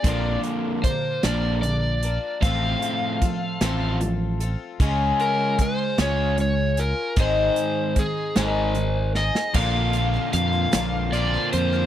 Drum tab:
CC |------------|------------|------------|------------|
HH |x-x-x-x-x-x-|x-x-x-x-x-x-|x-x-x-x-x-x-|x-x-x-x-x---|
SD |------o-----|------o-----|------o-----|------o---oo|
BD |o---o-------|o---o-------|o---o-------|o---o-------|

CC |x-----------|
HH |--x-x-x-x-x-|
SD |------o-----|
BD |o-----------|